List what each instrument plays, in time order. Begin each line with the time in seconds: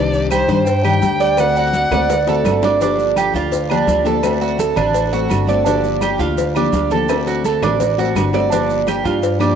Already playing: upright bass C2, steel-string acoustic guitar C3 D#3 G3 D4 G4, violin D5
0.13 high conga, maracas
0.29 steel-string acoustic guitar D#3 G3 D4 G4, cuban tres G4, violin C5, cowbell, high conga, low agogo, short guiro, claves, maracas
0.48 upright bass G2, steel-string acoustic guitar D#3 G3 D4 G4, cuban tres C5, high conga, low agogo, short guiro, maracas
0.66 violin G5, muted steel-string acoustic guitar stroke, cowbell, high conga, long guiro, maracas
0.83 steel-string acoustic guitar D#3 G3 D4 G4, cuban tres G4, high conga, low agogo, claves, maracas
1.01 upright bass D2, steel-string acoustic guitar G3 D4 G4, cowbell, high conga, low agogo, short guiro, maracas
1.20 cuban tres D5, cowbell, high conga, short guiro, maracas
1.37 steel-string acoustic guitar D3 A3 C4 F#4, violin F#5, cowbell, high conga, high timbale, low agogo, long guiro, claves, maracas
1.55 cuban tres F#4, high conga, low agogo, maracas
1.73 steel-string acoustic guitar D3 A3 C4 F#4, cowbell, high conga, short guiro, maracas
1.91 upright bass D2, steel-string acoustic guitar A3 C4 F#4, cuban tres D5, cowbell, high bongo, high conga, low conga, low timbale, low agogo, short guiro, claves, maracas
2.09 muted steel-string acoustic guitar stroke, cowbell, high bongo, high conga, low timbale, long guiro, maracas
2.27 steel-string acoustic guitar A3 C4 F#4, cuban tres A4, low bongo, high conga, low timbale, low agogo, maracas
2.44 upright bass G1, steel-string acoustic guitar D3 A3 C4 F#4, cowbell, high conga, low timbale, low agogo, short guiro, claves, maracas
2.62 cuban tres D4, low bongo, high conga, low timbale, low agogo, short guiro, maracas
2.81 steel-string acoustic guitar D3 F3 A#3 D4 G4, cuban tres D4, cowbell, low agogo, long guiro, maracas
2.99 high conga, maracas
3.16 steel-string acoustic guitar F3 A#3 D4 G4, cuban tres G4, cowbell, high conga, low agogo, short guiro, claves, maracas
3.34 upright bass D2, cuban tres F4, high conga, low agogo, short guiro, maracas
3.52 muted steel-string acoustic guitar stroke, cowbell, high conga, long guiro, maracas
3.69 steel-string acoustic guitar F3 A#3 D4 G4, cuban tres D4, high conga, low agogo, claves, maracas
3.87 upright bass D2, steel-string acoustic guitar F3 A#3 D4 G4, cowbell, high conga, low agogo, short guiro, maracas
4.05 steel-string acoustic guitar F3 A#3 D4 G4, cuban tres A4, cowbell, high conga, short guiro, maracas
4.23 steel-string acoustic guitar D3 A3 C4 F#4, cowbell, high conga, low agogo, long guiro, claves, maracas
4.41 cuban tres F#4, high conga, low agogo, maracas
4.58 steel-string acoustic guitar D3 A3 C4 F#4, cuban tres A4, cowbell, high conga, short guiro, maracas
4.76 upright bass A1, cuban tres D4, cowbell, high conga, low conga, low agogo, short guiro, claves, maracas
4.93 muted steel-string acoustic guitar stroke, cowbell, high conga, long guiro, maracas
5.12 steel-string acoustic guitar A3 C4 F#4, cuban tres F#4, high conga, low agogo, maracas
5.29 upright bass G1, steel-string acoustic guitar D3 A3 C4 F#4, cowbell, high conga, low agogo, short guiro, claves, maracas
5.47 steel-string acoustic guitar A3 C4 F#4, cuban tres D5, high conga, low agogo, short guiro, maracas
5.65 steel-string acoustic guitar D3 F3 A#3 D4 G4, cuban tres D4, cowbell, high conga, low agogo, long guiro, maracas
5.84 high conga, maracas
6.00 steel-string acoustic guitar F3 A#3 D4 G4, cuban tres G4, cowbell, high conga, low agogo, short guiro, claves, maracas
6.18 upright bass D2, cuban tres F4, high conga, low agogo, short guiro, maracas
6.37 muted steel-string acoustic guitar stroke, cowbell, high conga, long guiro, maracas
6.55 steel-string acoustic guitar F3 A#3 D4 G4, cuban tres D4, high conga, low agogo, claves, maracas
6.72 upright bass D2, steel-string acoustic guitar F3 A#3 D4 G4, cowbell, high conga, low agogo, short guiro, maracas
6.90 steel-string acoustic guitar F3 A#3 D4 G4, cuban tres A4, cowbell, high conga, short guiro, maracas
7.09 steel-string acoustic guitar D3 A3 C4 F#4, cowbell, high conga, high timbale, low agogo, long guiro, claves, maracas
7.27 cuban tres F#4, high conga, low agogo, maracas
7.44 steel-string acoustic guitar D3 A3 C4 F#4, cuban tres A4, cowbell, high conga, short guiro, maracas
7.62 upright bass A1, cuban tres D4, cowbell, high conga, low conga, low timbale, low agogo, short guiro, claves, maracas
7.80 muted steel-string acoustic guitar stroke, cowbell, high conga, low conga, low timbale, long guiro, maracas
7.98 steel-string acoustic guitar A3 C4 F#4, cuban tres F#4, high conga, low timbale, low agogo, maracas
8.15 upright bass G1, steel-string acoustic guitar D3 A3 C4 F#4, cowbell, high conga, low timbale, low agogo, short guiro, claves, maracas
8.33 steel-string acoustic guitar A3 C4 F#4, cuban tres D5, low timbale, low agogo, short guiro, maracas
8.51 steel-string acoustic guitar D3 F3 A#3 D4 G4, cuban tres D4, cowbell, high conga, low agogo, long guiro, maracas
8.70 high conga, maracas
8.86 steel-string acoustic guitar F3 A#3 D4 G4, cuban tres G4, cowbell, high conga, low agogo, short guiro, claves, maracas
9.04 upright bass G2, cuban tres F4, high conga, low agogo, short guiro, maracas
9.22 muted steel-string acoustic guitar stroke, cowbell, high conga, long guiro, maracas
9.39 steel-string acoustic guitar F3 A#3 D4 G4, cuban tres D4, high conga, low agogo, claves, maracas